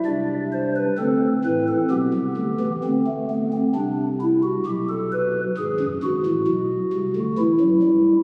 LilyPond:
<<
  \new Staff \with { instrumentName = "Pipe organ" } { \time 3/4 \key d \dorian \tempo 4 = 66 << { d''8 c''16 b'16 a'8 b'16 a'16 g'4 | r2. | r2. | } \\ { d'4 c'4 b4 | c'16 a16 b16 c'16 d'8 e'16 fis'16 g'16 a'16 b'8 | gis'8 fis'4. e'4 | } >> }
  \new Staff \with { instrumentName = "Pipe organ" } { \clef bass \time 3/4 \key d \dorian <c, c>4 <d, d>8 <a,, a,>8 <b,, b,>16 <c, c>16 <d, d>16 <e, e>16 | <d, d>4 <c, c>4 <b,, b,>4 | <gis,, gis,>16 <fis,, fis,>16 <gis,, gis,>16 <a,, a,>16 <b,, b,>8 <c, c>16 <d, d>16 <e, e>16 <fis, fis>16 <g, g>8 | }
>>